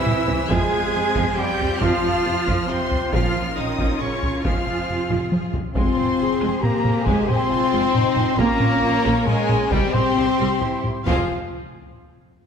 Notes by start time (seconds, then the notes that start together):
Already playing: E3 C4 E4 C5 E5 E6
0.06 C2 G3, taiko mid
0.28 C2 E3, taiko low
0.49 F2 F3 G#3 C4 F4 G#4 C5 G#5 G#6, taiko
0.71 F2 F3
0.93 F2 C3
1.15 F2 F3, taiko
1.36 F2 F3 G3 G4 G5 G6
1.59 F2 C3, taiko low
1.80 F2 F3 C4 F4 F5 F6, taiko
2.03 F2 F3
2.26 F2 C3
2.46 F2 F3, taiko
2.68 F2 C3 F3 C4 C5 C6
2.90 F2 C3, taiko low
3.12 A#1 F3 C#4 F4 A#4 F5 F6, taiko
3.34 A#1 F3
3.56 A#1 C#3 D#3 D#4 D#5 D#6
3.79 A#1 F3, taiko
4.00 A#1 C#3 F3 C#4 C#5 C#6
4.22 A#1 C#3, taiko low
4.41 F1 F3 G#3 C4 F4 G#4 F5 F6, taiko
4.46 C4
4.66 F1 F3
4.88 F1 C3
5.10 F1 F3, taiko mid
5.32 F1 F3, taiko high
5.54 F1 C3, taiko low
5.74 F1 G#3 C4 F4 G#4 C5 C6, taiko
5.97 F1 C4, taiko mid
6.18 F1 F4 G#4
6.40 F1 G#3, taiko rim
6.62 F1 A#3 C4 G4 A#5, taiko mid
6.84 F1 F4, taiko mid
7.05 F1 G#3 G#5, taiko
7.28 F1 C4 C6, taiko mid
7.50 F1 F4
7.72 F1 G#3
7.94 F1 C4 D#4, taiko mid
8.16 F1 F4, taiko mid
8.38 A#1 A#3 C#4 F4 A#4 C#5 A#5, taiko
8.59 A#1 C#4, taiko mid
8.83 A#1 F4
9.04 A#1 A#3, taiko rim
9.24 A#1 G#3 C#4 G#5, taiko mid
9.48 A#1 F4, taiko mid
9.70 C2 G3 C4 G4 C5 G5, taiko
9.93 C2 C4 C6, taiko mid
10.15 C2 E4
10.38 C2 G3
10.61 C2 C4 E4, taiko mid
10.84 C2 E4, taiko mid
11.06 F1 F2 F3 C4 F4 G#4 C5 F5, taiko low